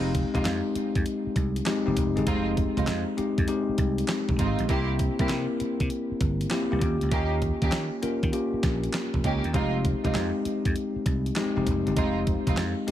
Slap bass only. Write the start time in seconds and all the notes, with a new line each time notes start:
Already playing: F1
0.35 F1
0.45 F2
0.76 muted slap bass stroke
0.96 F2
1.27 muted slap bass stroke
1.36 C2
1.87 F1
1.97 F1
2.18 G1
2.27 F1
2.77 F1
2.88 F2
3.18 muted slap bass stroke
3.38 F2
3.69 muted slap bass stroke
3.78 C2
4.29 F1
4.39 G#1
4.60 A#1
4.70 C2
5.20 C2
5.30 C3
5.61 muted slap bass stroke
5.80 C3
6.11 muted slap bass stroke
6.21 G1
6.72 C2
6.82 D#2
7.02 C#2
7.12 D#2
7.62 D#2
7.73 D#3
8.03 muted slap bass stroke
8.23 D#3
8.54 muted slap bass stroke
8.64 A#1
9.14 F1
9.24 C#2
9.45 D#2
9.54 F1
10.05 F1
10.15 F2
10.46 muted slap bass stroke
10.66 F2
10.96 muted slap bass stroke
11.06 C2
11.57 F1
11.67 F1
11.87 G1
11.97 F1
12.47 F1
12.57 F2